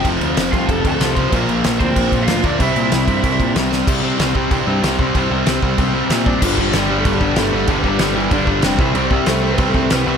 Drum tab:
CC |xxxxxxxx|xxxxxxxx|xxxxxxx-|x-x-x-x-|
SD |--o---o-|--o---o-|--o---oo|--o---o-|
BD |o--ooo-o|o--ooo-o|o--ooo--|o--oo--o|

CC |x-x-x-x-|x-x-x-x-|x-x-x-x-|x-x-x-x-|
SD |--o---o-|--o---o-|--o---o-|--o---o-|
BD |o--oo--o|oo--oo--|oo--oo-o|-o--oo--|